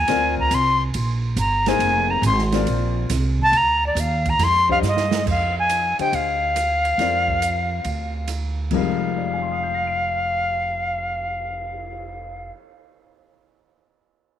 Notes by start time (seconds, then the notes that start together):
Already playing: G#5
0.08 D2 C4 F4 A#4 D5, snare, ride
0.38 A#5, kick
0.51 C2 C6, hi-hat pedal, ride
0.94 A#1, ride
1.36 G1 A#5, hi-hat pedal, ride
1.66 A#3 D#4 G#4 C5 G#5, snare, ride
1.79 F1, ride
2.10 A#5
2.22 G#1, hi-hat pedal, ride
2.26 C6
2.38 snare
2.52 C4 F4 A#4 D5, snare, ride
2.67 A#1, ride
3.10 C2, snare, hi-hat pedal, ride
3.39 A5, kick
3.52 D2, ride
3.57 A#5
3.87 D5
3.95 D#2, hi-hat pedal, ride
4.00 F5
4.26 A#5, kick, ride
4.39 F2, snare, ride
4.44 C6
4.69 D4 G4 C5 D#5 F5, kick
4.82 G2, snare, hi-hat pedal
4.88 D#5
4.97 snare
5.11 snare
5.26 F2, kick, crash
5.30 F5
5.59 G#5
5.69 hi-hat pedal, ride
5.99 D3 G4 C5 D#5 G5, muted upright bass stroke, ride
6.13 D2 F5, ride
6.56 cross-stick, hi-hat pedal, ride
6.85 ride
6.98 F2 C4 F4 A#4 D5, snare, ride
7.28 kick
7.42 hi-hat pedal, ride
7.85 D2, ride
8.28 cross-stick, hi-hat pedal, ride
8.71 F1 F2 F3 G3 G#3 D#4 A#4 F5, kick, crash
9.00 cymbal swell
9.18 D5
9.24 F5
9.33 G#5
9.42 C6
9.52 D#6
9.63 G6
9.74 A#6
9.87 D7